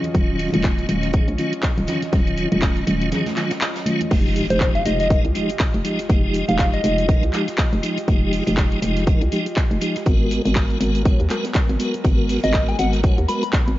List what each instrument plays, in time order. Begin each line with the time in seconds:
Already playing: analog synth pad F#3 C#4 F4 D#5
0.04 closed hi-hat, low conga
0.14 fm bass D#1, tonewheel organ D#3 F#3 C#4 F4, kick, closed hi-hat
0.39 open hi-hat
0.52 fm bass D#1, tonewheel organ D#3 F#3 C#4 F4, closed hi-hat, high conga, low conga
0.64 kick, snare, clap, closed hi-hat
0.78 closed hi-hat
0.89 fm bass D#1, tonewheel organ D#3 F#3 C#4 F4, closed hi-hat, open hi-hat, high conga
1.03 snare, closed hi-hat
1.13 tonewheel organ D#3 F#3 C#4 G#4, kick, closed hi-hat
1.28 fm bass A#1, closed hi-hat, high conga
1.38 tonewheel organ D#3 F#3 C#4 F4, closed hi-hat, open hi-hat
1.53 closed hi-hat
1.62 kick, snare, clap, closed hi-hat
1.78 fm bass D#1, closed hi-hat
1.87 tonewheel organ D#3 F#3 C#4 F4, snare, closed hi-hat, open hi-hat, low conga
2.02 snare, closed hi-hat
2.12 fm bass D#1, tonewheel organ D#3 F#3 C#4 F4, kick, snare, closed hi-hat
2.27 closed hi-hat
2.38 closed hi-hat, open hi-hat
2.52 fm bass D#1, tonewheel organ D#3 F#3 C#4 F4, closed hi-hat, high conga, low conga
2.62 kick, snare, clap, closed hi-hat
2.77 closed hi-hat
2.87 fm bass D#1, tonewheel organ D#3 F#3 C#4 F4, closed hi-hat, open hi-hat, high conga
3.02 open hi-hat
3.12 tonewheel organ D#3 F#3 C#4 G#4, snare, closed hi-hat, low conga
3.26 snare, closed hi-hat, high conga
3.36 tonewheel organ D#3 F#3 C#4 F4, snare, clap, closed hi-hat, open hi-hat
3.50 snare, closed hi-hat
3.61 snare, clap, closed hi-hat
3.76 snare, closed hi-hat
3.86 tonewheel organ D#3 F#3 C#4 F4, closed hi-hat, open hi-hat, high conga
4.01 closed hi-hat, low conga
4.11 fm bass F1, tonewheel organ F3 G#3 D#4 G4, analog synth pad G#3 F4 G4 D#5, kick, closed hi-hat, crash, impact, shaker
4.36 open hi-hat, shaker
4.50 fm bass F1, tonewheel organ F3 G#3 D#4 G4, soft synth lead C5, closed hi-hat, shaker
4.60 kick, snare, clap, closed hi-hat, shaker
4.75 soft synth lead F5, closed hi-hat
4.85 fm bass F1, tonewheel organ F3 G#3 D#4 G4, soft synth lead D#5, closed hi-hat, open hi-hat, shaker
5.00 soft synth lead D#5, snare, closed hi-hat, shaker
5.10 tonewheel organ F3 G#3 D#4 A#4, kick, closed hi-hat, shaker
5.25 fm bass C2, closed hi-hat
5.35 tonewheel organ F3 G#3 D#4 G4, closed hi-hat, open hi-hat, shaker
5.50 closed hi-hat, shaker
5.60 kick, snare, clap, closed hi-hat, shaker
5.74 fm bass F1, closed hi-hat
5.84 tonewheel organ F3 G#3 D#4 G4, closed hi-hat, open hi-hat, shaker
5.99 snare, closed hi-hat, shaker
6.09 fm bass F1, tonewheel organ F3 G#3 D#4 G4, kick, closed hi-hat, shaker
6.34 closed hi-hat, open hi-hat, shaker
6.48 fm bass F1, tonewheel organ F3 G#3 D#4 G4, soft synth lead F5, closed hi-hat, shaker
6.59 soft synth lead F5, kick, snare, clap, closed hi-hat, shaker
6.74 soft synth lead D#5, closed hi-hat
6.84 fm bass F1, tonewheel organ F3 G#3 D#4 G4, closed hi-hat, open hi-hat, shaker
6.98 closed hi-hat, shaker
7.08 tonewheel organ F3 G#3 D#4 A#4, kick, closed hi-hat, shaker
7.23 fm bass C2, closed hi-hat
7.33 tonewheel organ F3 G#3 D#4 G4, clap, closed hi-hat, open hi-hat, shaker
7.48 snare, closed hi-hat, shaker
7.57 kick, snare, clap, closed hi-hat, shaker
7.73 fm bass F1, closed hi-hat
7.83 tonewheel organ F3 G#3 D#4 G4, closed hi-hat, open hi-hat, shaker
7.98 closed hi-hat, shaker
8.07 fm bass F1, tonewheel organ F3 G#3 D#4 G4, kick, closed hi-hat, shaker
8.33 open hi-hat, shaker
8.47 fm bass F1, tonewheel organ F3 G#3 D#4 G4, closed hi-hat, shaker
8.57 kick, snare, clap, closed hi-hat, shaker
8.72 closed hi-hat
8.82 fm bass F1, tonewheel organ F3 G#3 D#4 G4, closed hi-hat, open hi-hat, shaker
8.97 snare, closed hi-hat, shaker
9.07 tonewheel organ F3 G#3 D#4 A#4, kick, closed hi-hat, shaker
9.21 fm bass C2, closed hi-hat
9.31 tonewheel organ F3 G#3 D#4 G4, closed hi-hat, open hi-hat, shaker
9.46 closed hi-hat, shaker
9.56 kick, snare, clap, closed hi-hat, shaker
9.71 fm bass F1, closed hi-hat
9.81 tonewheel organ F3 G#3 D#4 G4, closed hi-hat, open hi-hat, shaker
9.95 snare, closed hi-hat, shaker
10.06 fm bass G#1, analog synth pad F#3 B3 A#4, tonewheel organ G#3 B3 F#4 A#4, kick, closed hi-hat, shaker
10.31 closed hi-hat, open hi-hat, shaker
10.45 fm bass G#1, tonewheel organ G#3 B3 F#4 A#4, closed hi-hat, shaker
10.55 kick, snare, clap, closed hi-hat, shaker
10.70 closed hi-hat
10.80 fm bass G#1, tonewheel organ G#3 B3 F#4 A#4, closed hi-hat, open hi-hat, shaker
10.95 closed hi-hat, shaker
11.05 tonewheel organ G#3 B3 F#4 C#5, kick, closed hi-hat, shaker
11.20 fm bass D#2, closed hi-hat
11.30 tonewheel organ G#3 B3 F#4 A#4, clap, closed hi-hat, open hi-hat, shaker
11.44 snare, closed hi-hat, shaker
11.54 kick, snare, clap, closed hi-hat, shaker
11.69 fm bass G#1, closed hi-hat
11.79 tonewheel organ G#3 B3 F#4 A#4, closed hi-hat, open hi-hat, shaker
11.94 closed hi-hat, shaker
12.04 fm bass G#1, tonewheel organ G#3 B3 F#4 A#4, kick, closed hi-hat, shaker
12.29 open hi-hat, shaker
12.43 fm bass G#1, tonewheel organ G#3 B3 F#4 A#4, soft synth lead D#5, closed hi-hat, shaker
12.54 kick, snare, clap, closed hi-hat, shaker
12.69 soft synth lead G#5, closed hi-hat
12.79 fm bass G#1, tonewheel organ G#3 B3 F#4 A#4, soft synth lead F#5, closed hi-hat, open hi-hat, shaker
12.93 snare, closed hi-hat, shaker
13.03 tonewheel organ G#3 B3 F#4 C#5, kick, closed hi-hat, shaker
13.18 fm bass D#2, closed hi-hat
13.28 tonewheel organ G#3 B3 F#4 A#4, soft synth lead B5, closed hi-hat, open hi-hat, shaker
13.43 soft synth lead B5, closed hi-hat, shaker
13.53 kick, snare, clap, closed hi-hat, shaker
13.68 fm bass G#1, closed hi-hat